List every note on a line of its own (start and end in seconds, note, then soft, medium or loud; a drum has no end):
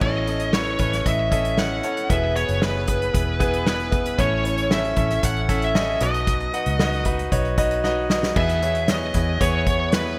0.01 0.76 A1 medium
0.01 0.76 A2 medium
0.01 0.76 E3 soft
0.01 0.22 C#4 medium
0.01 0.22 E4 medium
0.01 0.22 A4 medium
0.01 0.22 C#5 medium
0.01 0.53 D#5 medium
0.01 kick medium
0.01 crash medium
0.27 0.49 C#4 medium
0.27 0.49 E4 medium
0.27 0.49 A4 medium
0.27 0.49 D#5 medium
0.27 closed hi-hat medium
0.40 closed hi-hat soft
0.53 0.75 C#4 medium
0.53 0.74 E4 medium
0.53 0.75 A4 medium
0.53 0.75 B4 medium
0.53 1.06 C#5 medium
0.53 snare loud
0.67 closed hi-hat soft
0.79 1.04 A1 medium
0.79 1.00 C#4 medium
0.79 1.00 E4 medium
0.79 1.00 A4 medium
0.79 1.00 B4 medium
0.79 kick medium
0.79 closed hi-hat medium
0.93 snare soft
0.93 closed hi-hat soft
1.05 1.80 A1 medium
1.05 1.26 C#4 medium
1.05 1.26 E4 medium
1.05 1.27 A4 medium
1.05 1.27 D#5 medium
1.05 1.60 E5 loud
1.05 kick medium
1.05 closed hi-hat medium
1.31 1.52 C#4 medium
1.31 1.52 E4 medium
1.31 1.52 A4 medium
1.31 1.53 D#5 medium
1.31 kick medium
1.31 closed hi-hat medium
1.45 closed hi-hat soft
1.58 1.79 C#4 medium
1.58 1.79 E4 medium
1.58 1.79 A4 medium
1.58 1.79 C#5 medium
1.58 2.12 F#5 medium
1.58 snare medium
1.83 2.05 C#4 medium
1.83 2.05 E4 medium
1.83 2.05 A4 medium
1.83 2.05 C#5 medium
1.83 closed hi-hat medium
1.97 closed hi-hat soft
2.09 2.46 E1 loud
2.09 2.84 B2 medium
2.09 2.30 B3 medium
2.09 2.31 E4 medium
2.09 2.31 G#4 medium
2.09 2.31 B4 medium
2.09 2.36 E5 loud
2.09 kick medium
2.09 closed hi-hat medium
2.35 2.57 B3 medium
2.35 2.57 E4 medium
2.35 2.57 G#4 medium
2.35 2.57 C#5 medium
2.35 2.63 C#5 medium
2.35 closed hi-hat medium
2.49 3.11 F#1 medium
2.49 closed hi-hat soft
2.61 2.83 B3 medium
2.61 2.83 E4 medium
2.61 2.83 G#4 medium
2.61 2.83 B4 medium
2.61 3.67 B4 medium
2.61 snare loud
2.87 3.09 B3 medium
2.87 3.09 E4 medium
2.87 3.09 G#4 medium
2.87 3.09 B4 medium
2.87 kick medium
2.87 closed hi-hat medium
3.02 closed hi-hat soft
3.13 4.15 E1 medium
3.13 3.35 B3 medium
3.13 3.35 E4 medium
3.13 3.35 G#4 medium
3.13 3.35 B4 medium
3.13 kick medium
3.13 closed hi-hat medium
3.40 3.61 B3 medium
3.40 3.61 E4 medium
3.40 3.61 G#4 medium
3.40 3.61 B4 loud
3.40 kick medium
3.40 closed hi-hat medium
3.54 closed hi-hat soft
3.66 3.87 B3 medium
3.66 3.87 E4 medium
3.66 3.87 G#4 medium
3.66 3.87 B4 medium
3.66 4.21 B4 medium
3.66 snare loud
3.80 closed hi-hat soft
3.91 4.13 B3 medium
3.91 4.13 E4 medium
3.91 4.13 G#4 medium
3.91 4.13 B4 medium
3.91 kick medium
3.91 closed hi-hat medium
4.06 closed hi-hat medium
4.18 4.93 A1 medium
4.18 4.93 A2 medium
4.18 4.93 E3 medium
4.18 4.39 C#4 medium
4.18 4.39 E4 medium
4.18 4.40 A4 medium
4.18 4.40 C#5 medium
4.18 4.72 C#5 medium
4.18 kick medium
4.18 closed hi-hat medium
4.44 4.65 C#4 medium
4.44 4.65 E4 medium
4.44 4.65 A4 medium
4.44 4.65 C#5 medium
4.44 closed hi-hat medium
4.58 closed hi-hat medium
4.70 4.91 C#4 medium
4.70 4.92 E4 medium
4.70 4.92 A4 medium
4.70 4.92 C#5 medium
4.70 5.25 E5 medium
4.70 snare loud
4.85 closed hi-hat soft
4.96 5.21 A1 medium
4.96 5.18 C#4 medium
4.96 5.18 E4 medium
4.96 5.18 A4 medium
4.96 5.18 C#5 medium
4.96 kick medium
4.96 closed hi-hat medium
5.10 snare soft
5.10 closed hi-hat medium
5.23 5.97 A1 medium
5.23 5.44 C#4 medium
5.23 5.44 E4 medium
5.23 5.44 A4 medium
5.23 5.44 C#5 medium
5.23 5.64 F#5 medium
5.23 kick medium
5.23 closed hi-hat loud
5.36 closed hi-hat soft
5.49 5.70 C#4 medium
5.49 5.70 E4 medium
5.49 5.70 A4 medium
5.49 5.70 E5 medium
5.49 kick medium
5.49 closed hi-hat medium
5.62 6.00 E5 medium
5.62 closed hi-hat soft
5.75 5.96 C#4 medium
5.75 5.96 E4 medium
5.75 5.96 A4 medium
5.75 5.96 D#5 medium
5.75 snare loud
6.00 6.50 B1 medium
6.00 6.76 B2 medium
6.00 6.76 F#3 medium
6.00 6.43 D#4 medium
6.00 6.43 F#4 medium
6.00 6.43 B4 medium
6.00 6.43 D#5 medium
6.00 7.02 D#5 medium
6.00 closed hi-hat medium
6.14 closed hi-hat soft
6.27 kick medium
6.27 closed hi-hat medium
6.40 closed hi-hat soft
6.53 6.74 D#4 medium
6.53 6.74 F#4 medium
6.53 6.74 B4 medium
6.53 6.75 F#5 medium
6.53 closed hi-hat medium
6.66 7.28 C#2 medium
6.66 closed hi-hat soft
6.79 7.00 D#4 medium
6.79 7.00 F#4 medium
6.79 7.01 B4 medium
6.79 7.01 D#5 medium
6.79 snare loud
6.93 closed hi-hat soft
7.05 7.26 D#4 medium
7.05 7.26 F#4 medium
7.05 7.27 B4 medium
7.05 7.27 D#5 medium
7.05 kick medium
7.05 closed hi-hat medium
7.19 closed hi-hat soft
7.31 8.32 B1 medium
7.31 7.52 D#4 medium
7.31 7.53 F#4 medium
7.31 7.53 B4 medium
7.31 7.53 C#5 medium
7.31 kick medium
7.31 closed hi-hat medium
7.45 closed hi-hat soft
7.58 7.79 D#4 loud
7.58 7.79 F#4 medium
7.58 7.79 B4 medium
7.58 7.79 D#5 loud
7.58 kick medium
7.58 closed hi-hat medium
7.71 closed hi-hat soft
7.84 8.05 D#4 loud
7.84 8.05 F#4 medium
7.84 8.05 B4 medium
7.84 8.05 D#5 loud
7.84 snare medium
8.10 8.31 D#4 medium
8.10 8.31 F#4 medium
8.10 8.31 B4 medium
8.10 8.31 D#5 medium
8.10 snare medium
8.23 snare medium
8.36 9.10 E2 medium
8.36 9.10 B2 medium
8.36 8.57 B3 medium
8.36 8.57 E4 medium
8.36 8.57 G#4 medium
8.36 8.57 B4 medium
8.36 8.90 E5 loud
8.36 kick medium
8.36 crash medium
8.49 closed hi-hat soft
8.62 8.83 B3 medium
8.62 8.83 E4 medium
8.62 8.83 G#4 medium
8.62 8.83 C#5 medium
8.62 closed hi-hat medium
8.75 closed hi-hat soft
8.88 9.09 B3 medium
8.88 9.09 E4 medium
8.88 9.09 G#4 medium
8.88 9.09 C#5 medium
8.88 9.41 D#5 loud
8.88 snare loud
8.88 closed hi-hat medium
9.14 9.39 E2 medium
9.14 9.35 B3 medium
9.14 9.35 E4 medium
9.14 9.35 G#4 medium
9.14 9.35 B4 medium
9.14 kick medium
9.14 closed hi-hat medium
9.40 10.15 E2 medium
9.40 9.61 B3 loud
9.40 9.61 E4 medium
9.40 9.61 G#4 medium
9.40 9.61 C#5 loud
9.40 9.95 C#5 loud
9.40 kick medium
9.40 closed hi-hat loud
9.67 9.87 B3 medium
9.67 9.87 E4 medium
9.67 9.87 G#4 medium
9.67 9.88 C#5 medium
9.67 kick medium
9.67 closed hi-hat medium
9.92 10.13 B3 medium
9.92 10.14 E4 medium
9.92 10.14 G#4 medium
9.92 10.14 B4 medium
9.92 10.19 B4 medium
9.92 snare loud
9.92 closed hi-hat medium